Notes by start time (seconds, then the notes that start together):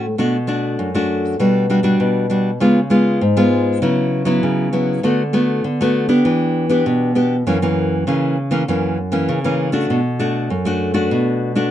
Already playing: A2
0.18 B2 A3 D4 F#4
0.47 A3 D4 F#4
0.79 F#2
0.95 A3 D4 F#4
1.39 B2 G3 D4 F#4
1.70 G3 D4 F#4
1.83 G3 D4 F#4
2.00 B2
2.30 G3 D4 F#4
2.60 C#3 G#3 B3 F4
2.90 G#3 B3 F4
3.21 G#2
3.37 G#3 B3 F4
3.82 C#3 F#3 B3 E4
4.25 F#3 B3 E4
4.43 C#3
4.73 F#3 B3 E4
5.03 D3 A3 B3 F#4
5.33 A3 B3 F#4
5.64 D3
5.81 A3 B3 F#4
6.09 B3 D4 G4
6.25 E3
6.69 B3 D4 G4
6.86 B2
7.15 B3 D4 G4
7.47 F#2 E3 A#3 C#4
7.62 E3 A#3 C#4
8.07 C#3 E3 A#3 C#4
8.51 E3 A#3 C#4
8.68 F#2 E3 A#3 C#4
9.12 E3 A#3 C#4
9.29 C#3
9.44 E3 A#3 C#4
9.72 A3 D4 F#4
9.90 B2
10.19 A3 D4 F#4
10.50 F#2
10.65 A3 D4 F#4
10.94 A3 D4 F#4
11.11 B2
11.55 A3 D4 F#4